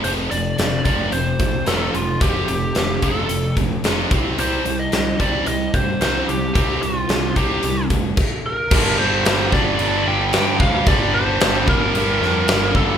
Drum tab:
CC |--------|--------|--------|------x-|
HH |xxxxxxxx|xxxxxxxx|xxxxxxxx|xxxxxx--|
SD |--o---o-|--o---o-|--o---o-|--o-----|
BD |---o-o--|o--o-o-o|---o-o--|o--o-oo-|

CC |x-x-x-x-|x-x-x-x-|
HH |--------|--------|
SD |--oo--o-|--o--oo-|
BD |o--o---o|o--o---o|